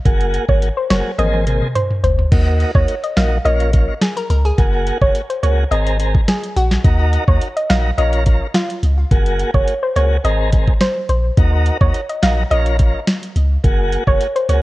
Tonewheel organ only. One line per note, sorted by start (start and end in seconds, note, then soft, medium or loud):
0.05 0.45 A#3 loud
0.05 0.45 F#4 medium
0.05 0.45 G#4 loud
0.48 0.69 A#3 medium
0.48 0.69 F#4 medium
0.48 0.69 G#4 medium
0.90 1.11 A#3 medium
0.90 1.12 F#4 medium
0.90 1.12 G#4 medium
1.18 1.45 A#3 medium
1.18 1.45 C4 medium
1.18 1.45 G#4 loud
1.47 1.68 A#3 medium
1.47 1.68 C4 medium
1.47 1.68 G#4 medium
2.32 2.72 A#3 medium
2.32 2.72 D#4 medium
2.32 2.72 F#4 loud
2.75 2.95 A#3 medium
2.75 2.95 D#4 medium
2.75 2.95 F#4 medium
3.16 3.38 A#3 medium
3.16 3.38 D#4 medium
3.16 3.38 F#4 medium
3.45 3.71 A#3 loud
3.45 3.71 C#4 medium
3.45 3.71 F4 loud
3.73 3.94 A#3 medium
3.73 3.94 C#4 medium
3.73 3.95 F4 medium
4.58 4.98 A#3 loud
4.58 4.98 F#4 medium
4.58 4.98 G#4 loud
5.01 5.22 A#3 medium
5.01 5.22 F#4 medium
5.01 5.22 G#4 medium
5.43 5.64 A#3 medium
5.43 5.64 F#4 medium
5.43 5.64 G#4 medium
5.71 5.98 C4 loud
5.71 5.98 G#4 medium
5.71 5.98 A#4 loud
6.00 6.21 C4 medium
6.00 6.21 G#4 medium
6.00 6.21 A#4 medium
6.85 7.24 D#4 loud
6.85 7.25 F#4 medium
6.85 7.25 A#4 loud
7.28 7.48 D#4 medium
7.28 7.48 F#4 medium
7.28 7.48 A#4 medium
7.69 7.91 D#4 medium
7.69 7.91 F#4 medium
7.69 7.91 A#4 medium
7.98 8.24 C#4 loud
7.98 8.24 F4 medium
7.98 8.24 A#4 loud
8.26 8.47 C#4 medium
8.26 8.47 F4 medium
8.26 8.47 A#4 medium
9.11 9.51 A#3 loud
9.11 9.51 F#4 medium
9.11 9.51 G#4 loud
9.54 9.74 A#3 medium
9.54 9.75 F#4 medium
9.54 9.75 G#4 medium
9.96 10.17 A#3 medium
9.96 10.17 F#4 medium
9.96 10.17 G#4 medium
10.24 10.50 C4 loud
10.24 10.50 G#4 medium
10.24 10.51 A#4 loud
10.52 10.74 C4 medium
10.52 10.74 G#4 medium
10.52 10.74 A#4 medium
11.37 11.77 D#4 loud
11.37 11.77 F#4 medium
11.37 11.77 A#4 loud
11.81 12.01 D#4 medium
11.81 12.01 F#4 medium
11.81 12.01 A#4 medium
12.22 12.43 D#4 medium
12.22 12.43 F#4 medium
12.22 12.44 A#4 medium
12.50 12.77 C#4 loud
12.50 12.77 F4 medium
12.50 12.77 A#4 loud
12.79 13.00 C#4 medium
12.79 13.00 F4 medium
12.79 13.00 A#4 medium
13.64 14.04 A#3 loud
13.64 14.04 F#4 medium
13.64 14.04 G#4 loud
14.07 14.27 A#3 medium
14.07 14.27 F#4 medium
14.07 14.28 G#4 medium
14.49 14.62 A#3 medium
14.49 14.62 F#4 medium
14.49 14.62 G#4 medium